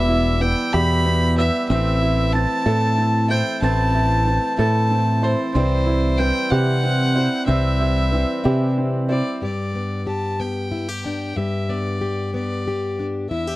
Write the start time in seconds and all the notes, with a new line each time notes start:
Already playing: E1 E2 B2 E3 G3 B3 E4 B4 E5 E6
0.09 E4
0.41 E3 G3 B3 E4 G5 G6
0.73 E2 B2 E3 G3 B3 E4 G4 B5 B6
1.06 B3
1.37 E3 G3 B3 E4 B4 E5 E6
1.68 A1 A2 E3 A3 C4 E4 E5 E6
2.02 E4
2.33 E3 A3 C4 E4 A5 A6
2.66 A2 E3 A3 C4 E4 A4
2.98 C4
3.29 A3 C4 E4 C5 G5 G6
3.62 A1 A2 E3 A3 C4 E4 A5 A6
3.95 E4
4.26 E3 A3 C4 E4
4.58 A2 E3 A3 C4 E4 A4 A5 A6
4.91 C4
5.22 A3 C4 E4 C5 C6
5.54 C2 C3 E3 G3 C4 E4 C5 C6
5.87 E4
6.18 E3 G3 C4 E4 G5 G6
6.51 C3 E3 G3 C4 E4 G4 F#5 F#6
6.83 C4
7.15 G3 C4 E4 C5
7.46 C2 C3 E3 G3 C4 E4 E5 E6
7.80 E4
8.11 E3 G3 C4 E4
8.44 C3 E3 G3 C4 E4 G4
8.78 C4
9.09 G3 C4 E4 C5 D5
9.42 G2 G4 D5
9.75 B3
10.07 G4 A5
10.40 B3 G5
10.71 E4
10.89 G4
11.05 D4 G5
11.36 G2 G4 E5
11.69 B3 D5
12.01 G4
12.34 B3 D5
12.68 G4
12.99 D4
13.30 E2 E4 E5
13.47 G4